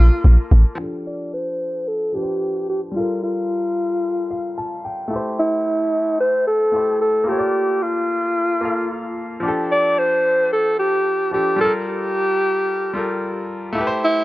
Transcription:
0.00 0.10 A#1 loud
0.00 0.73 A#3 medium
0.00 0.48 F4 loud
0.00 0.74 F4 medium
0.00 0.76 A4 medium
0.00 0.77 D5 medium
0.24 0.37 A#1 medium
0.51 0.64 A1 loud
0.75 2.09 F3 medium
0.75 2.11 D4 medium
0.80 2.12 G4 medium
0.80 2.13 A4 medium
1.07 1.31 D5 loud
1.34 1.89 C5 loud
1.88 2.16 A4 loud
2.12 2.94 F3 soft
2.12 2.95 D4 soft
2.12 2.68 G4 medium
2.12 2.95 G4 soft
2.12 2.22 B4 soft
2.23 2.99 C5 medium
2.69 2.81 G4 medium
2.91 5.05 G3 medium
2.91 5.07 F4 medium
2.96 3.21 F4 medium
2.96 5.08 A4 medium
2.96 5.09 A#4 medium
3.23 4.81 F4 medium
4.31 4.55 F5 medium
4.58 4.82 A5 medium
4.85 5.09 G5 medium
5.08 6.68 A3 medium
5.08 6.70 E4 medium
5.13 6.71 G4 medium
5.13 6.72 C5 medium
5.39 6.16 E4 loud
6.20 6.45 C5 loud
6.47 6.97 A4 loud
6.72 7.27 A3 soft
6.72 7.27 E4 soft
6.72 7.28 G4 soft
6.76 7.29 C5 medium
7.01 7.30 A4 medium
7.24 8.58 A#3 medium
7.24 8.59 F4 medium
7.28 7.84 G4 loud
7.28 8.61 A4 medium
7.28 7.36 C#5 medium
7.38 8.65 D5 medium
7.82 9.17 F4 medium
8.61 9.43 A#3 medium
8.61 9.43 F4 soft
8.61 9.44 A4 medium
8.61 9.45 F5 medium
9.40 11.27 F3 medium
9.40 11.28 D4 medium
9.45 11.30 G4 medium
9.45 11.31 A4 medium
9.72 10.00 D5 loud
9.98 10.52 C5 loud
10.52 10.77 A4 medium
10.79 11.29 G4 medium
11.31 11.59 F3 soft
11.31 11.60 D4 soft
11.31 11.58 G4 medium
11.31 11.60 G4 soft
11.35 11.60 A4 soft
11.56 12.90 G3 medium
11.56 12.92 F4 medium
11.61 11.73 A4 medium
11.61 12.93 A4 medium
11.61 12.94 A#4 medium
11.88 13.45 G4 medium
12.93 13.75 G3 medium
12.93 13.76 F4 medium
12.93 13.77 A4 medium
12.97 13.77 A#4 medium
13.73 14.24 A3 medium
13.73 14.24 E4 medium
13.78 14.24 G4 medium
13.78 13.85 B4 medium
13.87 14.24 C5 medium
14.04 14.24 E4 loud

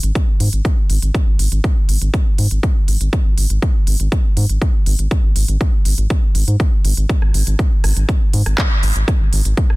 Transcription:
0.03 0.11 G#1 medium
0.03 closed hi-hat soft
0.15 kick loud
0.15 closed hi-hat soft
0.40 0.49 G#2 medium
0.40 open hi-hat loud
0.53 0.61 G#1 medium
0.53 closed hi-hat soft
0.65 kick loud
0.65 closed hi-hat soft
0.90 0.98 G#1 medium
0.90 open hi-hat loud
1.02 1.11 G#1 medium
1.02 closed hi-hat soft
1.15 kick loud
1.15 closed hi-hat soft
1.27 1.35 G#1 medium
1.39 1.48 G#1 medium
1.39 open hi-hat loud
1.52 1.60 G#1 medium
1.52 closed hi-hat soft
1.64 kick loud
1.64 closed hi-hat soft
1.89 1.97 G#1 medium
1.89 open hi-hat loud
2.01 2.10 G#1 medium
2.01 closed hi-hat soft
2.14 kick loud
2.14 closed hi-hat soft
2.38 2.47 G#2 medium
2.38 open hi-hat loud
2.51 2.59 G#1 medium
2.51 closed hi-hat soft
2.63 kick loud
2.63 closed hi-hat soft
2.88 2.97 G#1 medium
2.88 open hi-hat loud
3.00 3.09 G#1 medium
3.00 closed hi-hat soft
3.13 kick loud
3.13 closed hi-hat soft
3.25 3.34 G#1 medium
3.38 3.46 G#1 medium
3.38 open hi-hat loud
3.50 3.58 G#1 medium
3.50 closed hi-hat soft
3.62 kick loud
3.62 closed hi-hat soft
3.87 3.96 G#1 medium
3.87 open hi-hat loud
4.00 4.08 G#1 medium
4.00 closed hi-hat soft
4.12 kick loud
4.12 closed hi-hat soft
4.37 4.45 G#2 medium
4.37 open hi-hat loud
4.49 4.58 G#1 medium
4.49 closed hi-hat soft
4.62 kick loud
4.62 closed hi-hat soft
4.86 4.95 G#1 loud
4.86 open hi-hat loud
4.99 5.07 G#1 medium
4.99 closed hi-hat soft
5.11 kick loud
5.11 closed hi-hat soft
5.24 5.32 G#1 medium
5.36 5.44 G#1 medium
5.36 open hi-hat loud
5.48 5.57 G#1 medium
5.48 closed hi-hat soft
5.61 kick loud
5.61 closed hi-hat soft
5.85 5.94 G#1 medium
5.85 open hi-hat loud
5.98 6.06 G#1 medium
5.98 closed hi-hat soft
6.10 kick loud
6.10 closed hi-hat soft
6.35 6.44 G#1 loud
6.35 open hi-hat loud
6.48 6.56 G#2 medium
6.48 closed hi-hat soft
6.60 kick loud
6.60 closed hi-hat soft
6.84 6.93 G#1 medium
6.84 open hi-hat loud
6.97 7.05 G#1 medium
6.97 closed hi-hat soft
7.09 kick loud
7.09 closed hi-hat soft
7.22 7.30 G#1 medium
7.22 cross-stick soft
7.34 7.43 G#1 medium
7.34 open hi-hat loud
7.47 7.55 G#1 medium
7.47 closed hi-hat soft
7.59 kick loud
7.59 closed hi-hat soft
7.84 7.92 G#1 medium
7.84 cross-stick medium
7.84 open hi-hat loud
7.96 8.05 G#1 medium
7.96 closed hi-hat soft
8.09 kick loud
8.09 closed hi-hat soft
8.33 8.42 G#2 medium
8.33 open hi-hat loud
8.46 8.54 G#1 medium
8.46 cross-stick medium
8.46 closed hi-hat soft
8.58 kick loud
8.58 clap loud
8.58 closed hi-hat soft
8.83 8.92 G#1 loud
8.83 open hi-hat loud
8.96 9.04 G#1 medium
8.96 closed hi-hat soft
9.08 kick loud
9.08 cross-stick medium
9.08 closed hi-hat soft
9.21 9.29 G#1 medium
9.33 9.41 G#1 medium
9.33 open hi-hat loud
9.45 9.54 G#1 medium
9.45 closed hi-hat soft
9.57 kick loud
9.57 closed hi-hat soft
9.70 cross-stick medium

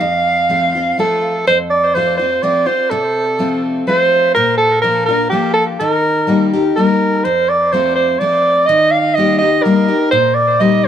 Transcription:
0.00 0.93 F2 medium
0.00 0.98 F5 loud
0.49 0.73 F3 medium
0.49 0.73 A3 medium
0.49 0.73 C4 medium
0.49 0.73 F4 medium
0.75 0.98 C4 soft
0.75 0.98 F4 soft
0.98 1.44 F3 medium
0.98 1.44 A3 medium
0.98 1.44 C4 medium
0.98 1.44 F4 medium
0.98 1.44 A4 medium
1.47 2.38 F2 medium
1.47 1.58 C5 loud
1.70 1.96 D5 medium
1.94 2.18 F3 medium
1.94 2.18 A3 medium
1.94 2.18 C4 medium
1.94 2.18 F4 medium
1.94 2.17 C5 medium
2.17 2.42 F4 medium
2.17 2.44 C5 medium
2.22 2.43 C4 soft
2.43 2.66 F3 medium
2.43 2.66 A3 medium
2.43 2.66 C4 medium
2.43 2.65 F4 medium
2.43 2.68 D5 medium
2.66 2.91 C4 soft
2.66 2.89 F4 medium
2.66 2.92 C5 medium
2.90 3.82 C3 medium
2.90 3.62 A4 medium
3.39 3.84 F3 medium
3.39 3.85 A3 medium
3.39 3.85 C4 medium
3.39 3.85 F4 medium
3.87 4.33 F3 medium
3.87 4.33 A3 medium
3.87 4.33 C4 medium
3.87 4.34 F4 medium
3.87 4.32 C5 loud
4.34 5.27 A#2 medium
4.34 4.57 A#4 medium
4.58 4.81 A4 medium
4.82 5.06 F3 medium
4.82 5.07 A#3 medium
4.82 5.07 D4 medium
4.82 5.07 F4 medium
4.82 5.05 A#4 medium
5.06 5.31 F4 medium
5.06 5.29 A#4 medium
5.10 5.32 D4 soft
5.29 5.77 F3 medium
5.29 5.77 A#3 medium
5.29 5.78 D4 medium
5.29 5.78 F4 medium
5.29 5.53 G4 medium
5.54 5.65 A4 medium
5.80 6.71 D#3 medium
5.80 6.48 A#4 medium
6.27 6.50 G3 medium
6.27 6.51 A#3 medium
6.27 6.51 D#4 medium
6.27 6.51 G4 medium
6.53 6.76 D#4 soft
6.53 6.76 G4 medium
6.76 7.22 G3 medium
6.76 7.22 A#3 medium
6.76 7.23 D#4 medium
6.76 7.23 G4 medium
6.76 7.26 A#4 medium
7.24 8.16 F2 medium
7.24 7.50 C5 medium
7.49 7.74 D5 medium
7.72 8.18 F3 soft
7.72 8.18 A3 medium
7.72 8.19 C4 medium
7.72 8.19 F4 medium
7.72 7.95 C5 medium
7.95 8.20 C5 medium
8.19 8.66 F3 medium
8.19 8.67 A3 medium
8.19 8.66 C4 medium
8.19 8.68 D5 loud
8.23 8.67 F4 medium
8.66 9.60 D#3 medium
8.66 8.93 D#5 loud
8.91 9.16 F5 medium
9.15 9.40 G3 medium
9.15 9.40 A#3 medium
9.15 9.40 D#4 medium
9.15 9.38 D#5 loud
9.19 9.40 G4 medium
9.38 9.64 G4 medium
9.38 9.64 D#5 medium
9.43 9.65 D#4 medium
9.63 9.88 G3 medium
9.63 9.88 A#3 medium
9.63 10.10 A#4 medium
9.67 9.88 D#4 medium
9.67 9.87 G4 medium
9.88 10.12 D#4 soft
9.88 10.11 G4 medium
10.11 10.88 A#2 medium
10.11 10.36 C5 loud
10.34 10.61 D5 medium
10.60 10.88 G3 medium
10.60 10.88 A#3 medium
10.60 10.88 D#4 medium
10.60 10.88 G4 medium
10.60 10.86 D#5 medium

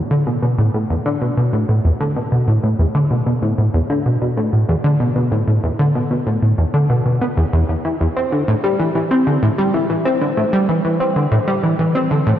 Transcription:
0.11 0.26 D3 loud
0.26 0.38 B2 medium
0.42 0.57 B2 medium
0.58 0.69 A2 medium
0.74 0.85 A2 medium
0.90 0.96 E2 medium
1.05 1.20 D3 medium
1.21 1.32 B2 medium
1.37 1.52 B2 medium
1.53 1.64 A2 medium
1.69 1.80 A2 medium
1.84 1.91 E2 medium
2.00 2.15 D3 loud
2.16 2.27 B2 medium
2.32 2.47 B2 medium
2.48 2.59 A2 medium
2.63 2.75 A2 medium
2.79 2.86 E2 medium
2.95 3.10 D3 loud
3.11 3.22 B2 medium
3.26 3.41 B2 medium
3.42 3.54 A2 medium
3.58 3.69 A2 medium
3.74 3.81 E2 loud
3.90 4.05 D3 medium
4.05 4.17 B2 medium
4.21 4.36 B2 medium
4.37 4.48 A2 medium
4.53 4.64 A2 medium
4.69 4.75 E2 medium
4.84 4.99 D3 medium
5.00 5.11 B2 medium
5.16 5.31 B2 medium
5.32 5.43 A2 medium
5.47 5.59 A2 medium
5.63 5.70 E2 loud
5.79 5.94 D3 loud
5.95 6.06 B2 medium
6.11 6.26 B2 medium
6.26 6.38 A2 medium
6.42 6.54 A2 medium
6.58 6.65 E2 loud
6.74 6.89 D3 loud
6.90 7.01 B2 medium
7.05 7.20 B2 medium
7.21 7.28 B3 medium
7.37 7.44 E2 loud
7.53 7.64 E2 loud
7.69 7.75 E2 medium
7.84 7.96 E3 medium
8.00 8.07 E2 medium
8.16 8.31 C4 medium
8.32 8.43 D3 medium
8.48 8.54 A2 loud
8.63 8.78 G3 loud
8.79 8.90 E3 medium
8.95 9.10 E3 medium
9.11 9.26 C4 medium
9.27 9.38 D3 medium
9.42 9.49 A2 loud
9.58 9.73 G3 loud
9.74 9.85 E3 medium
9.90 10.05 E3 medium
10.05 10.20 C4 medium
10.21 10.32 D3 medium
10.37 10.44 A2 loud
10.53 10.68 G3 loud
10.69 10.80 E3 medium
10.84 10.99 E3 medium
11.00 11.15 C4 medium
11.16 11.27 D3 medium
11.32 11.38 A2 loud
11.48 11.63 G3 medium
11.63 11.75 E3 medium
11.79 11.94 E3 medium
11.95 12.10 C4 medium
12.11 12.22 D3 medium
12.26 12.33 A2 loud

